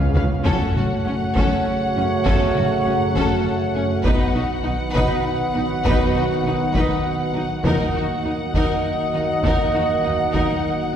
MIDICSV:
0, 0, Header, 1, 11, 480
1, 0, Start_track
1, 0, Tempo, 599401
1, 361, Time_signature, 6, 3, 24, 8
1, 8776, End_track
2, 0, Start_track
2, 0, Title_t, "Violin section"
2, 0, Program_c, 0, 48
2, 123, Note_on_c, 0, 77, 50
2, 187, Note_off_c, 0, 77, 0
2, 369, Note_on_c, 0, 78, 56
2, 3212, Note_off_c, 0, 78, 0
2, 3254, Note_on_c, 0, 78, 58
2, 6096, Note_off_c, 0, 78, 0
2, 6125, Note_on_c, 0, 78, 58
2, 8776, Note_off_c, 0, 78, 0
2, 8776, End_track
3, 0, Start_track
3, 0, Title_t, "Trumpet"
3, 0, Program_c, 1, 56
3, 0, Note_on_c, 1, 73, 65
3, 98, Note_off_c, 1, 73, 0
3, 357, Note_on_c, 1, 73, 74
3, 3206, Note_off_c, 1, 73, 0
3, 3250, Note_on_c, 1, 71, 70
3, 5869, Note_off_c, 1, 71, 0
3, 6118, Note_on_c, 1, 75, 68
3, 8776, Note_off_c, 1, 75, 0
3, 8776, End_track
4, 0, Start_track
4, 0, Title_t, "Violin section"
4, 0, Program_c, 2, 48
4, 117, Note_on_c, 2, 71, 48
4, 181, Note_off_c, 2, 71, 0
4, 362, Note_on_c, 2, 69, 68
4, 584, Note_off_c, 2, 69, 0
4, 611, Note_on_c, 2, 66, 52
4, 675, Note_off_c, 2, 66, 0
4, 859, Note_on_c, 2, 61, 57
4, 923, Note_off_c, 2, 61, 0
4, 1092, Note_on_c, 2, 69, 64
4, 1310, Note_off_c, 2, 69, 0
4, 1575, Note_on_c, 2, 61, 49
4, 1639, Note_off_c, 2, 61, 0
4, 1805, Note_on_c, 2, 69, 72
4, 2026, Note_off_c, 2, 69, 0
4, 2050, Note_on_c, 2, 66, 48
4, 2114, Note_off_c, 2, 66, 0
4, 2293, Note_on_c, 2, 61, 45
4, 2357, Note_off_c, 2, 61, 0
4, 2531, Note_on_c, 2, 69, 71
4, 2749, Note_off_c, 2, 69, 0
4, 3002, Note_on_c, 2, 61, 56
4, 3066, Note_off_c, 2, 61, 0
4, 3234, Note_on_c, 2, 71, 74
4, 3460, Note_off_c, 2, 71, 0
4, 3484, Note_on_c, 2, 66, 47
4, 3548, Note_off_c, 2, 66, 0
4, 3707, Note_on_c, 2, 63, 59
4, 3771, Note_off_c, 2, 63, 0
4, 3958, Note_on_c, 2, 71, 77
4, 4182, Note_off_c, 2, 71, 0
4, 4441, Note_on_c, 2, 63, 49
4, 4505, Note_off_c, 2, 63, 0
4, 4681, Note_on_c, 2, 71, 74
4, 4904, Note_off_c, 2, 71, 0
4, 4934, Note_on_c, 2, 66, 52
4, 4998, Note_off_c, 2, 66, 0
4, 5172, Note_on_c, 2, 63, 46
4, 5236, Note_off_c, 2, 63, 0
4, 5399, Note_on_c, 2, 71, 61
4, 5623, Note_off_c, 2, 71, 0
4, 5876, Note_on_c, 2, 63, 56
4, 5940, Note_off_c, 2, 63, 0
4, 6131, Note_on_c, 2, 70, 66
4, 6350, Note_off_c, 2, 70, 0
4, 6372, Note_on_c, 2, 66, 53
4, 6436, Note_off_c, 2, 66, 0
4, 6613, Note_on_c, 2, 63, 46
4, 6677, Note_off_c, 2, 63, 0
4, 6850, Note_on_c, 2, 70, 67
4, 7069, Note_off_c, 2, 70, 0
4, 7319, Note_on_c, 2, 63, 50
4, 7383, Note_off_c, 2, 63, 0
4, 7573, Note_on_c, 2, 70, 59
4, 7791, Note_off_c, 2, 70, 0
4, 7809, Note_on_c, 2, 66, 43
4, 7873, Note_off_c, 2, 66, 0
4, 8040, Note_on_c, 2, 63, 43
4, 8104, Note_off_c, 2, 63, 0
4, 8279, Note_on_c, 2, 70, 55
4, 8504, Note_off_c, 2, 70, 0
4, 8776, End_track
5, 0, Start_track
5, 0, Title_t, "Pipe organ"
5, 0, Program_c, 3, 19
5, 0, Note_on_c, 3, 59, 64
5, 0, Note_on_c, 3, 61, 65
5, 0, Note_on_c, 3, 68, 57
5, 0, Note_on_c, 3, 77, 59
5, 332, Note_off_c, 3, 59, 0
5, 351, Note_off_c, 3, 61, 0
5, 360, Note_off_c, 3, 68, 0
5, 363, Note_off_c, 3, 77, 0
5, 367, Note_on_c, 3, 61, 57
5, 369, Note_on_c, 3, 57, 59
5, 373, Note_on_c, 3, 78, 58
5, 374, Note_on_c, 3, 66, 54
5, 3211, Note_off_c, 3, 61, 0
5, 3212, Note_off_c, 3, 57, 0
5, 3214, Note_off_c, 3, 78, 0
5, 3215, Note_off_c, 3, 66, 0
5, 3241, Note_on_c, 3, 66, 60
5, 3241, Note_on_c, 3, 78, 57
5, 3246, Note_on_c, 3, 59, 59
5, 3250, Note_on_c, 3, 63, 56
5, 6090, Note_off_c, 3, 66, 0
5, 6090, Note_off_c, 3, 78, 0
5, 6112, Note_off_c, 3, 63, 0
5, 6124, Note_off_c, 3, 59, 0
5, 6126, Note_on_c, 3, 58, 63
5, 6127, Note_on_c, 3, 75, 53
5, 6128, Note_on_c, 3, 63, 59
5, 6129, Note_on_c, 3, 66, 59
5, 8776, Note_off_c, 3, 58, 0
5, 8776, Note_off_c, 3, 63, 0
5, 8776, Note_off_c, 3, 66, 0
5, 8776, Note_off_c, 3, 75, 0
5, 8776, End_track
6, 0, Start_track
6, 0, Title_t, "Viola section"
6, 0, Program_c, 4, 48
6, 117, Note_on_c, 4, 61, 53
6, 181, Note_off_c, 4, 61, 0
6, 350, Note_on_c, 4, 61, 72
6, 578, Note_off_c, 4, 61, 0
6, 610, Note_on_c, 4, 61, 47
6, 674, Note_off_c, 4, 61, 0
6, 837, Note_on_c, 4, 61, 57
6, 901, Note_off_c, 4, 61, 0
6, 1086, Note_on_c, 4, 61, 66
6, 1307, Note_off_c, 4, 61, 0
6, 1579, Note_on_c, 4, 61, 53
6, 1643, Note_off_c, 4, 61, 0
6, 1805, Note_on_c, 4, 61, 73
6, 2026, Note_off_c, 4, 61, 0
6, 2060, Note_on_c, 4, 61, 47
6, 2124, Note_off_c, 4, 61, 0
6, 2289, Note_on_c, 4, 61, 50
6, 2353, Note_off_c, 4, 61, 0
6, 2529, Note_on_c, 4, 61, 60
6, 2748, Note_off_c, 4, 61, 0
6, 3013, Note_on_c, 4, 61, 53
6, 3077, Note_off_c, 4, 61, 0
6, 3244, Note_on_c, 4, 63, 74
6, 3465, Note_off_c, 4, 63, 0
6, 3485, Note_on_c, 4, 63, 47
6, 3549, Note_off_c, 4, 63, 0
6, 3714, Note_on_c, 4, 63, 59
6, 3778, Note_off_c, 4, 63, 0
6, 3964, Note_on_c, 4, 63, 75
6, 4186, Note_off_c, 4, 63, 0
6, 4457, Note_on_c, 4, 63, 53
6, 4521, Note_off_c, 4, 63, 0
6, 4692, Note_on_c, 4, 63, 78
6, 4910, Note_off_c, 4, 63, 0
6, 4928, Note_on_c, 4, 63, 50
6, 4992, Note_off_c, 4, 63, 0
6, 5188, Note_on_c, 4, 63, 62
6, 5252, Note_off_c, 4, 63, 0
6, 5420, Note_on_c, 4, 63, 67
6, 5634, Note_off_c, 4, 63, 0
6, 5894, Note_on_c, 4, 63, 53
6, 5958, Note_off_c, 4, 63, 0
6, 6138, Note_on_c, 4, 63, 68
6, 6354, Note_off_c, 4, 63, 0
6, 6383, Note_on_c, 4, 63, 45
6, 6447, Note_off_c, 4, 63, 0
6, 6604, Note_on_c, 4, 63, 53
6, 6668, Note_off_c, 4, 63, 0
6, 6847, Note_on_c, 4, 63, 67
6, 7068, Note_off_c, 4, 63, 0
6, 7325, Note_on_c, 4, 63, 48
6, 7389, Note_off_c, 4, 63, 0
6, 7561, Note_on_c, 4, 63, 67
6, 7785, Note_off_c, 4, 63, 0
6, 7803, Note_on_c, 4, 63, 39
6, 7867, Note_off_c, 4, 63, 0
6, 8030, Note_on_c, 4, 63, 46
6, 8094, Note_off_c, 4, 63, 0
6, 8265, Note_on_c, 4, 63, 62
6, 8496, Note_off_c, 4, 63, 0
6, 8776, End_track
7, 0, Start_track
7, 0, Title_t, "French horn section"
7, 0, Program_c, 5, 60
7, 0, Note_on_c, 5, 59, 86
7, 0, Note_on_c, 5, 65, 71
7, 85, Note_off_c, 5, 59, 0
7, 111, Note_off_c, 5, 65, 0
7, 351, Note_on_c, 5, 57, 74
7, 360, Note_on_c, 5, 66, 74
7, 3203, Note_off_c, 5, 57, 0
7, 3208, Note_off_c, 5, 66, 0
7, 3251, Note_on_c, 5, 59, 75
7, 3252, Note_on_c, 5, 66, 69
7, 5987, Note_off_c, 5, 59, 0
7, 5987, Note_off_c, 5, 66, 0
7, 6123, Note_on_c, 5, 63, 73
7, 6126, Note_on_c, 5, 58, 75
7, 8776, Note_off_c, 5, 58, 0
7, 8776, Note_off_c, 5, 63, 0
7, 8776, End_track
8, 0, Start_track
8, 0, Title_t, "Trombone section"
8, 0, Program_c, 6, 61
8, 0, Note_on_c, 6, 49, 70
8, 0, Note_on_c, 6, 56, 69
8, 123, Note_off_c, 6, 49, 0
8, 123, Note_off_c, 6, 56, 0
8, 365, Note_on_c, 6, 49, 74
8, 365, Note_on_c, 6, 54, 77
8, 3210, Note_off_c, 6, 49, 0
8, 3210, Note_off_c, 6, 54, 0
8, 3253, Note_on_c, 6, 54, 74
8, 3259, Note_on_c, 6, 51, 80
8, 6096, Note_off_c, 6, 54, 0
8, 6099, Note_off_c, 6, 51, 0
8, 6119, Note_on_c, 6, 54, 76
8, 6121, Note_on_c, 6, 51, 74
8, 8776, Note_off_c, 6, 51, 0
8, 8776, Note_off_c, 6, 54, 0
8, 8776, End_track
9, 0, Start_track
9, 0, Title_t, "Cello section"
9, 0, Program_c, 7, 48
9, 0, Note_on_c, 7, 37, 69
9, 275, Note_off_c, 7, 37, 0
9, 365, Note_on_c, 7, 42, 68
9, 429, Note_off_c, 7, 42, 0
9, 615, Note_on_c, 7, 42, 51
9, 679, Note_off_c, 7, 42, 0
9, 846, Note_on_c, 7, 42, 54
9, 910, Note_off_c, 7, 42, 0
9, 1084, Note_on_c, 7, 42, 66
9, 1148, Note_off_c, 7, 42, 0
9, 1572, Note_on_c, 7, 42, 51
9, 1636, Note_off_c, 7, 42, 0
9, 1817, Note_on_c, 7, 42, 68
9, 1881, Note_off_c, 7, 42, 0
9, 2051, Note_on_c, 7, 42, 47
9, 2115, Note_off_c, 7, 42, 0
9, 2294, Note_on_c, 7, 42, 52
9, 2358, Note_off_c, 7, 42, 0
9, 2526, Note_on_c, 7, 42, 65
9, 2590, Note_off_c, 7, 42, 0
9, 3002, Note_on_c, 7, 42, 48
9, 3066, Note_off_c, 7, 42, 0
9, 3246, Note_on_c, 7, 47, 70
9, 3310, Note_off_c, 7, 47, 0
9, 3487, Note_on_c, 7, 47, 47
9, 3551, Note_off_c, 7, 47, 0
9, 3711, Note_on_c, 7, 47, 50
9, 3775, Note_off_c, 7, 47, 0
9, 3954, Note_on_c, 7, 47, 70
9, 4018, Note_off_c, 7, 47, 0
9, 4436, Note_on_c, 7, 47, 53
9, 4500, Note_off_c, 7, 47, 0
9, 4680, Note_on_c, 7, 47, 71
9, 4744, Note_off_c, 7, 47, 0
9, 4920, Note_on_c, 7, 47, 50
9, 4984, Note_off_c, 7, 47, 0
9, 5152, Note_on_c, 7, 47, 49
9, 5216, Note_off_c, 7, 47, 0
9, 5389, Note_on_c, 7, 47, 70
9, 5453, Note_off_c, 7, 47, 0
9, 5867, Note_on_c, 7, 47, 53
9, 5931, Note_off_c, 7, 47, 0
9, 6108, Note_on_c, 7, 51, 71
9, 6172, Note_off_c, 7, 51, 0
9, 6351, Note_on_c, 7, 51, 51
9, 6416, Note_off_c, 7, 51, 0
9, 6592, Note_on_c, 7, 51, 50
9, 6656, Note_off_c, 7, 51, 0
9, 6839, Note_on_c, 7, 51, 68
9, 6903, Note_off_c, 7, 51, 0
9, 7316, Note_on_c, 7, 51, 46
9, 7380, Note_off_c, 7, 51, 0
9, 7559, Note_on_c, 7, 51, 58
9, 7623, Note_off_c, 7, 51, 0
9, 7801, Note_on_c, 7, 51, 46
9, 7865, Note_off_c, 7, 51, 0
9, 8030, Note_on_c, 7, 51, 43
9, 8094, Note_off_c, 7, 51, 0
9, 8275, Note_on_c, 7, 51, 62
9, 8339, Note_off_c, 7, 51, 0
9, 8776, End_track
10, 0, Start_track
10, 0, Title_t, "Double bass section"
10, 0, Program_c, 8, 48
10, 0, Note_on_c, 8, 37, 69
10, 283, Note_off_c, 8, 37, 0
10, 372, Note_on_c, 8, 30, 68
10, 436, Note_off_c, 8, 30, 0
10, 613, Note_on_c, 8, 30, 50
10, 677, Note_off_c, 8, 30, 0
10, 853, Note_on_c, 8, 30, 54
10, 917, Note_off_c, 8, 30, 0
10, 1093, Note_on_c, 8, 30, 66
10, 1157, Note_off_c, 8, 30, 0
10, 1566, Note_on_c, 8, 30, 51
10, 1630, Note_off_c, 8, 30, 0
10, 1816, Note_on_c, 8, 30, 74
10, 1880, Note_off_c, 8, 30, 0
10, 2051, Note_on_c, 8, 30, 52
10, 2115, Note_off_c, 8, 30, 0
10, 2291, Note_on_c, 8, 30, 53
10, 2355, Note_off_c, 8, 30, 0
10, 2521, Note_on_c, 8, 30, 71
10, 2585, Note_off_c, 8, 30, 0
10, 3008, Note_on_c, 8, 30, 50
10, 3072, Note_off_c, 8, 30, 0
10, 3236, Note_on_c, 8, 35, 75
10, 3300, Note_off_c, 8, 35, 0
10, 3485, Note_on_c, 8, 35, 55
10, 3549, Note_off_c, 8, 35, 0
10, 3723, Note_on_c, 8, 35, 50
10, 3787, Note_off_c, 8, 35, 0
10, 3968, Note_on_c, 8, 35, 74
10, 4032, Note_off_c, 8, 35, 0
10, 4447, Note_on_c, 8, 35, 53
10, 4512, Note_off_c, 8, 35, 0
10, 4691, Note_on_c, 8, 35, 78
10, 4755, Note_off_c, 8, 35, 0
10, 4932, Note_on_c, 8, 35, 58
10, 4996, Note_off_c, 8, 35, 0
10, 5164, Note_on_c, 8, 35, 53
10, 5228, Note_off_c, 8, 35, 0
10, 5413, Note_on_c, 8, 35, 67
10, 5477, Note_off_c, 8, 35, 0
10, 5873, Note_on_c, 8, 35, 51
10, 5937, Note_off_c, 8, 35, 0
10, 6124, Note_on_c, 8, 39, 76
10, 6188, Note_off_c, 8, 39, 0
10, 6367, Note_on_c, 8, 39, 53
10, 6431, Note_off_c, 8, 39, 0
10, 6611, Note_on_c, 8, 39, 53
10, 6675, Note_off_c, 8, 39, 0
10, 6851, Note_on_c, 8, 39, 67
10, 6915, Note_off_c, 8, 39, 0
10, 7332, Note_on_c, 8, 39, 46
10, 7396, Note_off_c, 8, 39, 0
10, 7569, Note_on_c, 8, 39, 65
10, 7633, Note_off_c, 8, 39, 0
10, 7811, Note_on_c, 8, 39, 48
10, 7875, Note_off_c, 8, 39, 0
10, 8052, Note_on_c, 8, 39, 47
10, 8116, Note_off_c, 8, 39, 0
10, 8288, Note_on_c, 8, 39, 64
10, 8352, Note_off_c, 8, 39, 0
10, 8776, End_track
11, 0, Start_track
11, 0, Title_t, "Taiko and cinematic ensemble drums"
11, 126, Note_on_c, 9, 43, 94
11, 206, Note_off_c, 9, 43, 0
11, 366, Note_on_c, 9, 41, 88
11, 446, Note_off_c, 9, 41, 0
11, 613, Note_on_c, 9, 47, 48
11, 693, Note_off_c, 9, 47, 0
11, 1089, Note_on_c, 9, 41, 76
11, 1169, Note_off_c, 9, 41, 0
11, 1807, Note_on_c, 9, 41, 88
11, 1887, Note_off_c, 9, 41, 0
11, 2049, Note_on_c, 9, 47, 46
11, 2130, Note_off_c, 9, 47, 0
11, 2527, Note_on_c, 9, 41, 69
11, 2607, Note_off_c, 9, 41, 0
11, 3245, Note_on_c, 9, 41, 86
11, 3325, Note_off_c, 9, 41, 0
11, 3965, Note_on_c, 9, 41, 76
11, 4045, Note_off_c, 9, 41, 0
11, 4683, Note_on_c, 9, 41, 87
11, 4763, Note_off_c, 9, 41, 0
11, 5404, Note_on_c, 9, 41, 72
11, 5484, Note_off_c, 9, 41, 0
11, 6118, Note_on_c, 9, 41, 86
11, 6198, Note_off_c, 9, 41, 0
11, 6841, Note_on_c, 9, 41, 68
11, 6921, Note_off_c, 9, 41, 0
11, 7557, Note_on_c, 9, 41, 84
11, 7637, Note_off_c, 9, 41, 0
11, 8281, Note_on_c, 9, 41, 62
11, 8361, Note_off_c, 9, 41, 0
11, 8776, End_track
0, 0, End_of_file